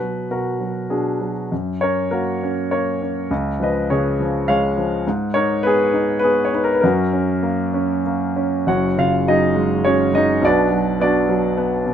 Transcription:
Already playing: B2 F#4 B4
0.01 F#3
0.30 B2 F#4 A#4
0.60 F#3
0.90 B2 D4 G#4
1.21 F#3
1.52 F#2
1.81 C#4 A#4 C#5
2.11 A#3 F#4 A#4
2.43 C#4
2.71 A#3 A#4 C#5
3.02 C#4
3.31 C#2
3.60 F3 B4 D#5
3.90 C#3 G#4 C#5
4.20 F3
4.48 G#3 C#5 F5
4.78 F3
5.07 G#2
5.34 D#4 A#4 C#5
5.63 B3 G#4 B4
5.94 D#4
6.19 B3 B4
6.24 G#4
6.45 C#5
6.53 D#4 B4
6.64 A#4
6.73 B4
6.81 F#2 F#4 A#4
7.13 C#4
7.43 A#3
7.74 C#4
8.06 A#3
8.36 C#4
8.67 F#1 F#2 F#4 C#5 F#5
8.97 C#3 F4 F5
9.27 F#3 D#4 G#4 D#5
9.56 G#3
9.85 F#3 C#4 C#5
10.13 G#3 D#4 D#5
10.42 B1 B2 D5
10.46 D4 F#4 B4
10.71 F#3
11.00 B3 D4 F#4 D5
11.29 F#3
11.57 B3
11.86 B2

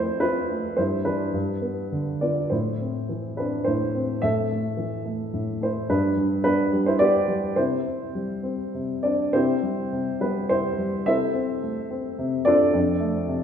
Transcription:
Already playing: F2 A3 C4 E4 F4 C5 D5
0.20 C4 F4 B4
0.50 A3
0.77 G2 E4 C5
1.05 E3 D4 B4
1.34 G2
1.62 B3
1.92 D3
2.21 B3 F4 D5
2.50 A2 E4 C5
2.81 C4
3.09 E3
3.37 C4 D4 B4
3.64 A2 E4 C5
3.95 C4
4.22 A2 A4 E5
4.51 A3
4.77 E3
5.05 A3
5.33 A2
5.61 A3 E4 C5
5.89 G2 D4 B4
6.16 G3
6.44 B3 D4 B4
6.73 G3
6.86 E4 C5
6.99 B3 G4 D5
7.28 G3
7.56 C3 E4 C5
7.87 C4
8.15 G3
8.43 C4
8.74 C3
9.03 C4 D4 D5
9.33 C3 C4 E4 G4 C5
9.62 G3
9.93 C3
10.20 G3 B3 B4
10.49 C3 C4 E4 C5
10.78 G3
11.06 C3 E4 A4 C5 E5
11.33 C4
11.62 A3
11.91 C4
12.18 C3
12.45 C4 D4 F4 A4 D5
12.73 F2
13.00 A3
13.28 C3

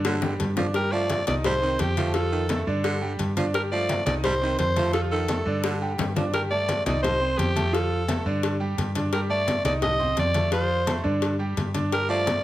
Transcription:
Already playing: G2 D3 D4 D5
0.05 D3, cowbell, high bongo, high conga
0.22 G3 G4 G5, low bongo
0.40 G2, cowbell, high conga
0.57 F3 D4 D5 D6, cowbell, low bongo, high conga
0.74 G3 G4 A#4 G5, cowbell, high conga
0.92 F3 A3 A4 D5 A5, high conga
1.10 cowbell, high conga
1.27 C2 D#4 D5 D#5 D#6, cowbell, high conga
1.44 G3 C5, cowbell, high conga, low conga
1.62 D#3 C4 C5 C6, high conga
1.79 F2 G4, cowbell, high conga
1.97 F3 A3 A4 A5, cowbell, high conga
2.14 F3 F4 A4 F5, cowbell
2.32 D#3, high conga
2.49 A3 A4 A5, cowbell, high conga
2.67 G2 D3 D4 D5, high conga
2.84 D3, cowbell, high conga
3.01 G3 G4 G5, high conga
3.19 G2, cowbell, high conga
3.37 F3 D4 D5 D6, cowbell, high conga
3.54 G3 G4 A#4 G5, cowbell
3.72 F3 A3 A4 D5 A5, high conga
3.89 cowbell, high conga
4.06 C2 D#4 D5 D#5 D#6, cowbell, high conga
4.24 G3 C5, cowbell, high conga, low conga
4.41 D#3 C4 C5 C6, high conga
4.59 F2 C5, cowbell, high conga
4.76 F3 A3 A4 A5, cowbell, high conga
4.93 F3 F4 A4 F5, cowbell, high conga
5.12 D#3 A4, high conga
5.28 A3 A4 A5, cowbell, high conga
5.46 G2 D3 D4 D5, high conga
5.64 D3, cowbell, high bongo, high conga
5.81 G3 G4 G5, high conga
5.98 G2, cowbell, low bongo, high conga
6.16 F3 D4 D5 D6, cowbell, low bongo, high conga
6.34 G3 G4 A#4 G5, cowbell, high conga
6.51 A3 A4 D5 A5, high conga
6.69 cowbell, high conga
6.86 C2 D#4 D5 D#5 D#6, cowbell, high conga
7.03 C5, cowbell, high conga, low conga
7.21 C4 C5 C6, high conga
7.38 F2 G4, cowbell, high conga
7.56 A3 A4 A5, cowbell, high conga
7.73 F3 F4 A4 F5, cowbell, high conga
7.91 high conga
8.08 A3 A4 A5, cowbell, high conga
8.25 G2 D3 D4 D5, high conga
8.43 cowbell, high conga
8.60 G3 G4 G5, high conga
8.78 G2, cowbell, high conga
8.95 D4 D5 D6, cowbell, high conga
9.13 G3 G4 A#4 G5, cowbell
9.30 A3 A4 D5 A5, high conga
9.48 cowbell, high conga
9.64 C2 D#4 D5 D#5 D#6, cowbell, high conga
9.82 D#5, cowbell, high conga, low conga
9.99 C4 C5 C6, high conga, low conga
10.17 F2 D5, cowbell, high conga
10.34 A3 A4 A5, cowbell, high conga
10.51 F3 F4 C5 F5, cowbell, high conga
10.70 high conga
10.86 A3 A4 A5, cowbell, high conga
11.03 G2 D3 D4 D5, high conga
11.22 cowbell, high conga
11.39 G3 G4 G5, high conga
11.57 G2, cowbell, high conga
11.74 D4 D5 D6, cowbell, high conga
11.92 G3 G4 A#4 G5, cowbell
12.09 F3 A3 A4 D5 A5, high conga
12.27 cowbell, high conga

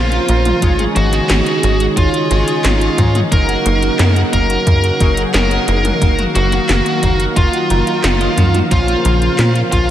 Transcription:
Already playing: A#1 A#2 C#3 F3 A#3 C#4 F4 A#4 C5 F5
0.12 F4, closed hi-hat
0.28 A#1 A#3, closed hi-hat
0.45 F4, closed hi-hat, mid tom
0.62 G#1 D#3 G#3 C#4 D#4 G#4 C#5, kick, closed hi-hat
0.79 G#4, closed hi-hat, mid tom
0.96 G#1 G#3 F#4, closed hi-hat
1.13 G#4, snare, closed hi-hat
1.30 G#1 G#3, snare, clap, closed hi-hat
1.46 G#4, closed hi-hat
1.63 G#1 G#3, closed hi-hat
1.80 G#4, closed hi-hat
1.97 G#1 G#3 F4, kick, closed hi-hat
2.14 G#4, closed hi-hat
2.31 G#1 G#3 C#4 D#4 G#4 C#5, closed hi-hat
2.48 G#4, closed hi-hat
2.64 G#1 G#3, snare, clap, closed hi-hat
2.81 G#4, closed hi-hat
2.98 G#2 G#3, kick, closed hi-hat, mid tom
3.15 G#4, closed hi-hat, mid tom
3.32 F#1 C#3 F#3 A#3 C#4 D#4 F#4 A#4, kick, closed hi-hat
3.49 F#4, closed hi-hat
3.66 F#1 A#3, closed hi-hat
3.83 F#4, closed hi-hat
3.99 F#2 A#3, snare, clap, closed hi-hat
4.16 F#4, closed hi-hat
4.33 F#1 A#3 A#4, kick, closed hi-hat
4.50 F#4, closed hi-hat
4.67 F#2 A#3, kick, closed hi-hat
4.84 F#4, closed hi-hat
5.00 F#1 F#3 A#3 C#4 D#4 F#4 G#4, kick, closed hi-hat
5.17 F#4, closed hi-hat
5.34 F#1 A#3 A#4, snare, clap, closed hi-hat
5.51 F#4, closed hi-hat
5.68 F#1 A#3, closed hi-hat
5.85 F#4, closed hi-hat, mid tom
6.02 F#1 D#3 F#3 A#3 D#4 F#4 A#4 F5, kick, closed hi-hat
6.19 F#4, closed hi-hat, mid tom
6.35 F#1 A#3 F#4, closed hi-hat
6.52 F#4, snare, closed hi-hat
6.69 F#1 A#3, snare, clap, closed hi-hat
6.86 F#4, closed hi-hat
7.03 F#1 A#3, kick, closed hi-hat
7.20 F#4, closed hi-hat
7.36 F#1 A#3 F4, kick, closed hi-hat
7.53 F#4, closed hi-hat
7.70 F#1 F#3 D#4 F4 A#4, closed hi-hat
7.87 F4, closed hi-hat
8.04 F#1 F4, snare, clap, closed hi-hat
8.21 D#5, closed hi-hat
8.38 F#2 F#4, kick, closed hi-hat, mid tom
8.54 F#4, closed hi-hat, mid tom
8.71 A#1 A#2 C#3 F3 A#3 C#4 F4 A#4 C5, kick, closed hi-hat
8.88 F4, closed hi-hat
9.05 A#1 A#3, closed hi-hat
9.22 F4, closed hi-hat
9.39 A#2 A#3, snare, clap, closed hi-hat
9.55 F4, closed hi-hat
9.72 A#1 A#3 F4, kick, closed hi-hat

